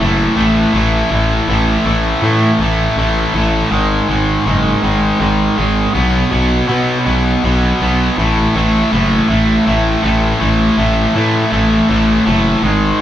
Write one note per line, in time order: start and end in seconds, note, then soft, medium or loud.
0.00 0.29 F#1 loud
0.00 0.35 A2 medium
0.00 0.36 E3 medium
0.00 0.36 A3 medium
0.36 0.66 A1 medium
0.36 0.72 A2 medium
0.36 0.73 E3 loud
0.36 0.74 A3 loud
0.73 1.03 A1 loud
0.73 1.09 A2 medium
0.73 1.10 E3 loud
0.73 1.11 A3 medium
1.10 1.40 A1 loud
1.10 1.46 A2 medium
1.10 1.47 E3 loud
1.10 1.48 A3 loud
1.48 1.77 A1 loud
1.48 1.85 A2 medium
1.48 1.85 E3 loud
1.48 1.85 A3 loud
1.85 2.14 A1 medium
1.85 2.21 A2 medium
1.85 2.22 E3 medium
1.85 2.22 A3 loud
2.22 2.52 A2 loud
2.22 2.59 A2 medium
2.22 2.59 E3 loud
2.22 2.60 A3 loud
2.59 2.89 A1 medium
2.59 2.96 A2 loud
2.59 2.97 E3 loud
2.59 2.97 A3 loud
2.96 3.26 A1 medium
2.96 3.33 A2 medium
2.96 3.33 E3 loud
2.96 3.34 A3 loud
3.34 3.64 A1 medium
3.34 3.69 A2 medium
3.34 3.69 E3 loud
3.34 3.70 A3 loud
3.71 4.01 G#1 loud
3.71 4.07 G#2 loud
3.71 4.08 D#3 medium
3.71 4.09 G#3 loud
4.08 4.38 G#1 medium
4.08 4.45 G#2 loud
4.08 4.45 D#3 medium
4.08 4.46 G#3 loud
4.46 4.76 F#1 medium
4.46 4.82 G#2 medium
4.46 4.82 D#3 medium
4.46 4.83 G#3 loud
4.83 5.12 G#1 medium
4.83 5.19 G#2 medium
4.83 5.20 D#3 loud
4.83 5.20 G#3 loud
5.20 5.50 G#1 medium
5.20 5.56 G#2 medium
5.20 5.56 D#3 loud
5.20 5.57 G#3 loud
5.57 5.87 G#1 loud
5.57 5.92 G#2 loud
5.57 5.92 D#3 loud
5.57 5.93 G#3 loud
5.94 6.24 B1 loud
5.94 6.29 B2 loud
5.94 6.30 F#3 loud
5.94 6.31 B3 loud
6.30 6.61 B1 loud
6.30 6.66 B2 medium
6.30 6.67 F#3 medium
6.30 6.68 B3 medium
6.68 7.05 B2 medium
6.68 6.99 B2 medium
6.68 7.05 F#3 medium
6.68 7.06 B3 medium
7.06 7.36 B1 medium
7.06 7.42 B2 loud
7.06 7.43 F#3 loud
7.06 7.44 B3 loud
7.44 7.73 B1 loud
7.44 7.80 B2 medium
7.44 7.81 F#3 medium
7.44 7.81 B3 loud
7.81 8.10 B1 medium
7.81 8.16 B2 medium
7.81 8.16 F#3 medium
7.81 8.16 B3 loud
8.17 8.47 A1 loud
8.17 8.55 A2 medium
8.17 8.56 E3 loud
8.17 8.56 A3 loud
8.55 8.84 A1 medium
8.55 8.91 A2 medium
8.55 8.92 E3 medium
8.55 8.92 A3 medium
8.91 9.22 F#1 loud
8.91 9.27 A2 medium
8.91 9.28 E3 medium
8.91 9.29 A3 medium
9.29 9.59 A1 medium
9.29 9.64 A2 loud
9.29 9.65 E3 loud
9.29 9.65 A3 loud
9.65 9.96 A1 loud
9.65 10.01 A2 loud
9.65 10.02 E3 medium
9.65 10.03 A3 loud
10.02 10.33 A1 loud
10.02 10.39 A2 medium
10.02 10.39 E3 medium
10.02 10.39 A3 loud
10.40 10.70 A1 loud
10.40 10.76 A2 medium
10.40 10.77 E3 loud
10.40 10.77 A3 loud
10.77 11.07 A1 loud
10.77 11.13 A2 medium
10.77 11.14 E3 medium
10.77 11.15 A3 medium
11.15 11.50 A2 medium
11.15 11.45 A2 medium
11.15 11.51 E3 medium
11.15 11.52 A3 loud
11.51 11.82 A1 medium
11.51 11.87 A2 loud
11.51 11.88 E3 loud
11.51 11.89 A3 loud
11.89 12.19 A1 loud
11.89 12.24 A2 loud
11.89 12.25 E3 loud
11.89 12.25 A3 loud
12.25 12.56 F#1 loud
12.25 12.61 A2 loud
12.25 12.61 E3 loud
12.25 12.62 A3 loud
12.62 12.93 G#1 loud
12.62 12.99 G#2 loud
12.62 13.00 D#3 loud
12.62 13.00 G#3 loud